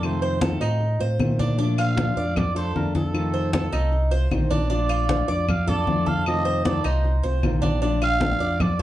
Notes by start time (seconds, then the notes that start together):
Already playing: F2 A4
0.02 C3 D#3 A3 C4 F4 C5, high conga, claves
0.22 C5, high conga
0.41 C3 D#3 A3 C4 F4 A4, high conga
0.61 A2 A3 C4 D#4 F4, high conga, claves
0.80 muted nylon-string guitar stroke, high conga
0.99 A2 A3 C4 F4 C5, high conga
1.19 A#2 C3 D#3 A3 C4 F4, high conga, claves
1.39 D4, high conga
1.58 F3 A3 D4 F4, high conga
1.78 F4 F5, high conga, claves
1.96 F3 A3 D4 F4, high conga
2.16 F2 A3 D4 F4 D5, high conga
2.35 D5, muted nylon-string guitar stroke, high conga, low conga, claves
2.55 A3 D4 F4 A4 C5, high conga
2.74 F2 F3 A3 D4 F4 A#4, high conga
2.95 A4, high conga
3.13 C3 D#3 A3 C4 F4, high conga, claves
3.34 C5, high conga
3.53 C3 D#3 A3 C4 F4 A4, high conga
3.72 C2 A3 C4 D#4 F4, high conga, claves
3.92 muted nylon-string guitar stroke, high conga
4.11 A3 C4 F4 C5, high conga
4.30 A#1 C3 D#3 A3 C4 F4, high conga, claves
4.51 D4, high conga
4.69 F3 A3 D4 F4 D5, high conga
4.89 F4, high conga, claves
5.08 F3 A3 D4 F4, high conga
5.28 F2 A3 D4 F4 D5, high conga
5.49 F5, high conga, low conga, claves
5.67 A3 D4 F4 A4 D5, high conga, low conga
5.86 F2 F3 A3 D4 F4, high conga
6.06 A4 F5, high conga
6.26 C3 D#3 A3 C4 F4 D#5, high conga, claves
6.45 C5, high conga
6.65 C3 D#3 A3 C4 F4 A4 D5, high conga
6.84 C2 A3 C4 D#4 F4 C5, high conga, claves
7.05 muted nylon-string guitar stroke, high conga
7.23 C2 A3 C4 F4 C5, high conga
7.43 A#1 C3 D#3 A3 C4 F4, high conga, claves
7.62 D4, high conga
7.82 F3 A3 D4 F4, high conga
8.02 F4 F5, high conga, claves
8.21 F3 A3 D4 F4, high conga
8.40 F2 A3 D4 F4 D5, high conga
8.59 D5, muted nylon-string guitar stroke, high conga, low conga, claves
8.79 F4